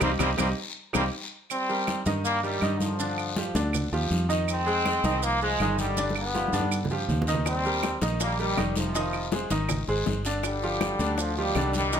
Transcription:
0.00 fingered electric bass C2, trombone section G3 A#3 C4, upright piano C4 D#4 G4, low bongo, high conga, long guiro, claves, maracas
0.19 fingered electric bass C2, trombone section G3 A#3 C4, upright piano C4 D#4 G4, low bongo, high conga, long guiro, claves, maracas
0.37 fingered electric bass C2, trombone section G3 A#3 C4, upright piano C4 D#4 G4, low bongo, high conga, long guiro, claves, maracas
0.93 fingered electric bass C2, trombone section G3 A#3 C4, upright piano C4 D#4 G4, low bongo, high conga, long guiro, claves, maracas
1.50 trombone section G3 C4, high conga, long guiro, claves, maracas
1.69 upright piano G3 G4 A#4, high conga, maracas
1.87 high conga, short guiro, claves, maracas
2.06 fingered electric bass G2, upright piano D#3 D#4 D#5, high conga, short guiro, maracas
2.25 trombone section G3 A#3, high conga, long guiro, maracas
2.43 trombone section D#3 G3, upright piano G3 G4 A#4, high conga, maracas
2.61 fingered electric bass G2, upright piano D#3 D#4 D#5, high conga, short guiro, claves, maracas
2.80 trombone section D3 F3, high conga, short guiro, maracas
2.99 upright piano D3 D4 D5, high conga, long guiro, maracas
3.18 high conga, claves, maracas
3.36 upright piano F3 F4 G4, high conga, short guiro, maracas
3.55 fingered electric bass D2, upright piano D3 D4 D5, high conga, short guiro, maracas
3.73 high conga, low conga, long guiro, claves, maracas
3.92 fingered electric bass D#2, upright piano F3 F4 G4, high conga, maracas
4.11 fingered electric bass F2, high conga, short guiro, maracas
4.29 upright piano D#3 D#4 D#5, short guiro, maracas
4.48 trombone section G#3 C4, high conga, long guiro, claves, maracas
4.66 upright piano G#3 G#4 C5, high conga, maracas
4.85 high conga, short guiro, claves, maracas
5.04 fingered electric bass C2, upright piano D#3 D#4 D#5, high conga, short guiro, maracas
5.23 trombone section F3 A#3, high conga, long guiro, maracas
5.42 trombone section F3 G#3, upright piano G#3 G#4 C5, high conga, maracas
5.60 fingered electric bass G1, upright piano D#3 D#4 D#5, high conga, short guiro, claves, maracas
5.78 trombone section D3 G3, high conga, short guiro, maracas
5.97 upright piano D3 D4 D5, high conga, long guiro, maracas
6.10 high conga
6.16 trombone section G3 B3, claves, maracas
6.34 upright piano F3 F4 G4, high conga, short guiro, maracas
6.48 high conga
6.53 fingered electric bass G2, upright piano D3 D4 D5, short guiro, maracas
6.60 high conga
6.72 long guiro, claves, maracas
6.85 low conga
6.90 upright piano F3 F4 G4, maracas
7.09 fingered electric bass D#2, low conga, short guiro, maracas
7.22 low conga
7.27 upright piano D#3 D#4 D#5, short guiro, maracas
7.34 low conga
7.45 trombone section G3 C4, high bongo, high conga, long guiro, claves, maracas
7.65 upright piano G3 G4 A#4, high bongo, high conga, maracas
7.83 high bongo, high conga, short guiro, claves, maracas
8.01 fingered electric bass A#1, upright piano D#3 D#4 D#5, high conga, short guiro, maracas
8.20 trombone section G3 A#3, high bongo, high conga, long guiro, maracas
8.39 trombone section D#3 G3, upright piano G3 G4 A#4, high bongo, high conga, maracas
8.57 fingered electric bass F1, upright piano D#3 D#4 D#5, high bongo, low bongo, high conga, short guiro, claves, maracas
8.76 trombone section C3 F3, high bongo, high conga, short guiro, maracas
8.94 upright piano D#3 D#4 D#5, high bongo, high conga, long guiro, maracas
9.13 high bongo, high conga, claves, maracas
9.32 upright piano G#3 G#4 C5, high bongo, high conga, short guiro, maracas
9.50 fingered electric bass G#1, upright piano D#3 D#4 D#5, high conga, short guiro, maracas
9.69 high bongo, high conga, low conga, long guiro, claves, maracas
9.88 fingered electric bass G#1, upright piano G#3 G#4 C5, high bongo, high conga, maracas
10.06 fingered electric bass G1, high bongo, low bongo, high conga, short guiro, maracas
10.25 upright piano D3 D4 D5, high bongo, short guiro, maracas
10.43 trombone section D3 G3, high bongo, high conga, long guiro, claves, maracas
10.62 upright piano F3 F4 G4, high bongo, high conga, maracas
10.81 high bongo, high conga, short guiro, claves, maracas
10.99 fingered electric bass D2, upright piano D3 D4 D5, high conga, short guiro, maracas
11.18 trombone section D3 F3, high bongo, high conga, long guiro, maracas
11.36 trombone section D#3 G3, upright piano F3 F4 G4, high bongo, high conga, maracas
11.55 fingered electric bass C2, upright piano D3 D4 D5, high bongo, low bongo, high conga, short guiro, claves, maracas
11.73 trombone section D#3 G3, high bongo, high conga, short guiro, maracas
11.92 upright piano D#3 D#4 D#5, high bongo, long guiro, maracas

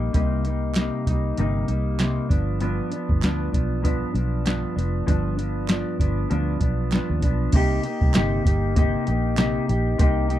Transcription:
Already playing: clean electric guitar G3 A#3 D#4
0.13 fingered electric bass C2, clean electric guitar C3 G3 A#3 D#4, kick, closed hi-hat
0.44 clean electric guitar A#3 D#4, closed hi-hat
0.48 clean electric guitar G3
0.75 clean electric guitar C3 G3 A#3, snare, clap, closed hi-hat
0.79 clean electric guitar D#4
1.06 fingered electric bass C2, clean electric guitar A#3 D#4, kick, closed hi-hat
1.11 clean electric guitar G3
1.37 fingered electric bass G1, clean electric guitar C3 G3 A#3 D#4, closed hi-hat
1.68 fingered electric bass C2, clean electric guitar G3 A#3 D#4, closed hi-hat
1.99 clean electric guitar C3 G3 A#3 D#4, snare, clap, closed hi-hat
2.29 fingered electric bass G1, clean electric guitar F3 B3 D4, kick, closed hi-hat
2.60 clean electric guitar G2 F3 B3 D4, closed hi-hat
2.92 clean electric guitar B3 D4, closed hi-hat
2.96 clean electric guitar F3
3.09 fingered electric bass G1, kick
3.22 fingered electric bass D2, clean electric guitar G2 F3 B3 D4, snare, clap, closed hi-hat
3.52 fingered electric bass B1, clean electric guitar F3 B3 D4, kick, closed hi-hat
3.82 clean electric guitar G2 F3 B3 D4, kick, closed hi-hat
4.14 fingered electric bass B1, clean electric guitar F3 B3 D4, closed hi-hat
4.45 clean electric guitar G2 F3 B3 D4, snare, clap, closed hi-hat
4.76 fingered electric bass F1, clean electric guitar F3 B3 D4, closed hi-hat
5.06 fingered electric bass G1, clean electric guitar G2 F3 B3 D4, kick, closed hi-hat
5.37 clean electric guitar F3 B3 D4, closed hi-hat
5.68 clean electric guitar G2 F3 B3 D4, snare, clap, closed hi-hat
5.99 fingered electric bass G1, clean electric guitar F3 B3 D4, kick, closed hi-hat
6.30 fingered electric bass D2, clean electric guitar G2 F3 B3 D4, closed hi-hat
6.60 fingered electric bass B1, clean electric guitar B3 D4, kick, closed hi-hat
6.64 clean electric guitar F3
6.91 clean electric guitar G2 F3 B3, snare, clap, closed hi-hat
6.95 clean electric guitar D4
7.10 fingered electric bass D#2
7.22 fingered electric bass B1, clean electric guitar B3 D4, kick, closed hi-hat
7.26 clean electric guitar F3
7.52 fingered electric bass C2, clean electric guitar C3 A#3 D#4 G4, kick, closed hi-hat, crash
7.83 clean electric guitar A#3 D#4 G4, closed hi-hat
8.01 fingered electric bass C2, kick
8.14 fingered electric bass G1, clean electric guitar C3 A#3 D#4 G4, snare, clap, closed hi-hat
8.45 fingered electric bass G1, clean electric guitar A#3 D#4 G4, kick, closed hi-hat
8.75 clean electric guitar C3 A#3 D#4 G4, kick, closed hi-hat
9.07 fingered electric bass A#1, clean electric guitar A#3 D#4 G4, closed hi-hat
9.37 clean electric guitar C3 A#3 D#4 G4, snare, clap, closed hi-hat
9.68 fingered electric bass A#1, clean electric guitar A#3 D#4 G4, closed hi-hat
9.98 fingered electric bass C2, clean electric guitar C3 A#3 D#4 G4, kick, closed hi-hat
10.29 clean electric guitar A#3 D#4 G4, closed hi-hat

